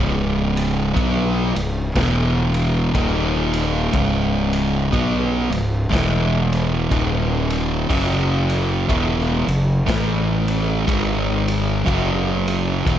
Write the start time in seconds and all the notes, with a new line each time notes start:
Already playing: C#1 C#2 G#2 C#3
0.57 ride
0.95 B1 B2 F#3 B3, kick, ride
1.54 C#1 C#2 G#2, ride
1.95 E1 E2 B2 E3, kick, snare, ride
2.54 ride
2.94 D#1 D#2 A#2 D#3, kick, ride
3.53 ride
3.93 C#1 C#2 G#2 C#3, kick, ride
4.53 ride
4.92 B1 B2 F#3 B3, kick, ride
5.51 C#1 C#2 G#2, ride
5.90 E1 E2 B2 E3, kick, ride
5.95 snare
6.53 ride
6.91 D#1 D#2 A#2 D#3, kick, ride
7.50 ride
7.89 F#1 F#2 C#3 F#3, kick, crash
8.50 ride
8.89 E1 E2 B2 E3, kick, ride
9.20 snare
9.47 F#1 F#2 C#3, ride
9.86 A1 A2 E3 A3, kick, snare, ride
10.48 ride
10.85 G#1 G#2 D#3 G#3, kick, ride
11.48 ride
11.85 F#1 F#2 C#3 F#3, kick, ride
12.48 ride
12.86 E1 E2 B2 E3, kick, ride